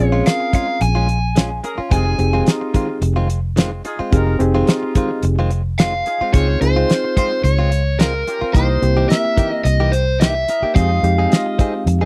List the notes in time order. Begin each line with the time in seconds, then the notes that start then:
Already playing: C4 D#5
0.00 A#1 C#4 F4 G#4
0.05 C#5
0.12 G#3 C#4 F4
0.26 G#4 A#4 F5, snare, closed hi-hat
0.40 muted clean electric guitar stroke
0.53 G#3 C#4 F4 F5, kick, closed hi-hat
0.68 muted clean electric guitar stroke
0.81 A#1 G#5, muted clean electric guitar stroke, closed hi-hat
0.95 G#3 C#4 F4
1.09 muted clean electric guitar stroke, closed hi-hat
1.36 G#3 C#4 F4, snare, closed hi-hat
1.50 muted clean electric guitar stroke
1.63 C#4 G#4 A#4, muted clean electric guitar stroke, closed hi-hat
1.78 C#4 F4, muted fingered electric bass stroke
1.91 F1 D#3 G#3 C4 D#4 F4 G4 G#4 G#5, kick, closed hi-hat
2.06 muted clean electric guitar stroke
2.18 F1 C4 D#4 G4 G#4, muted clean electric guitar stroke, closed hi-hat
2.33 D#3 G#3 C4 F4
2.46 D#4 F4, snare, closed hi-hat
2.61 muted clean electric guitar stroke
2.74 D#3 G#3 C4 F4, kick, closed hi-hat
2.89 muted clean electric guitar stroke
3.02 F1, muted clean electric guitar stroke, closed hi-hat
3.16 D#3 G#3 C4 F4
3.29 muted clean electric guitar stroke, closed hi-hat
3.56 D#3 G#3 C4 F4, snare, closed hi-hat
3.72 muted clean electric guitar stroke
3.84 D#4 F4 G#4, muted clean electric guitar stroke, closed hi-hat
3.99 G#3 C4 F4, muted fingered electric bass stroke
4.12 F1 C4 D#4 F4 G4 G#4 A#4, kick, closed hi-hat
4.27 muted clean electric guitar stroke
4.39 F1 C4 D#4 G4 G#4, muted clean electric guitar stroke, closed hi-hat
4.55 D#3 G#3 C4 F4
4.67 D#4 F4, snare, closed hi-hat
4.83 muted clean electric guitar stroke
4.95 D#3 G#3 C4 F4, kick, closed hi-hat
5.11 muted clean electric guitar stroke
5.23 F1, muted clean electric guitar stroke, closed hi-hat
5.39 D#3 G#3 C4 F4
5.51 closed hi-hat
5.78 D#3 G#3 C4 F4 F5, snare, closed hi-hat
6.06 D#4 F4 G#4, muted clean electric guitar stroke, closed hi-hat
6.21 G#3 C4 F4, muted fingered electric bass stroke
6.33 C#2 G#3 C4 C#4 D#4 F4 G#4 C5 C#5, kick, closed hi-hat
6.49 muted clean electric guitar stroke
6.61 C#2 C4 D#4 F4 G#4 C5, muted clean electric guitar stroke, closed hi-hat
6.76 G#3 C4 F4
6.89 F4 C5, snare, closed hi-hat
7.04 muted clean electric guitar stroke
7.17 G#3 C4 F4 C5, kick, closed hi-hat
7.32 muted clean electric guitar stroke
7.44 C#2 C#5, muted clean electric guitar stroke, closed hi-hat
7.59 G#3 C4 F4
7.72 muted clean electric guitar stroke, closed hi-hat
7.99 G#3 C4 F4 A#4, snare, closed hi-hat
8.14 muted clean electric guitar stroke
8.27 C#4 F4 G4, muted clean electric guitar stroke, closed hi-hat
8.41 C4 F4, muted fingered electric bass stroke
8.53 C2 E3 A#3 D#4 E4 G4 A#4 C5 D#5, kick, closed hi-hat
8.70 muted clean electric guitar stroke
8.82 C2 A#3 C4 E4 G4, muted clean electric guitar stroke, closed hi-hat
8.97 E3 A#3 D#4 G4
9.09 A#4 E5, snare, closed hi-hat
9.25 muted clean electric guitar stroke
9.37 E3 A#3 D#4 G4, kick, closed hi-hat
9.51 D#5, muted clean electric guitar stroke
9.64 C2 D#5, muted clean electric guitar stroke, closed hi-hat
9.80 E3 A#3 D#4 G4
9.92 C5, muted clean electric guitar stroke, closed hi-hat
10.20 E3 A#3 D#4 G4 E5, snare, closed hi-hat
10.35 muted clean electric guitar stroke
10.48 E4 A#4 D#5, muted clean electric guitar stroke, closed hi-hat
10.62 A#3 D#4 G4, muted fingered electric bass stroke
10.75 F2 G#3 C4 D#4 F4 G4 G#4 D#5 F5, kick, closed hi-hat
10.91 muted clean electric guitar stroke
11.03 F2 G#3 C4 D#4 G4, muted clean electric guitar stroke, closed hi-hat
11.18 C4 D#4 G#4
11.32 F4 D#5, snare, closed hi-hat
11.46 muted clean electric guitar stroke
11.59 C4 D#4 G#4, kick, closed hi-hat
11.74 muted clean electric guitar stroke
11.86 F2, muted clean electric guitar stroke, closed hi-hat
12.01 D#4 G#4